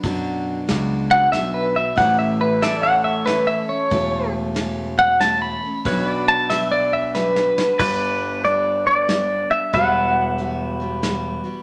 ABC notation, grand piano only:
X:1
M:3/4
L:1/8
Q:"Swing" 1/4=93
K:Bm
V:1 name="Grand piano" clef=bass
F,,2 C,,2 B,,,2 | A,,,6 | E,,,6 | B,,,6 |
G,,,6 | E,,,6 |]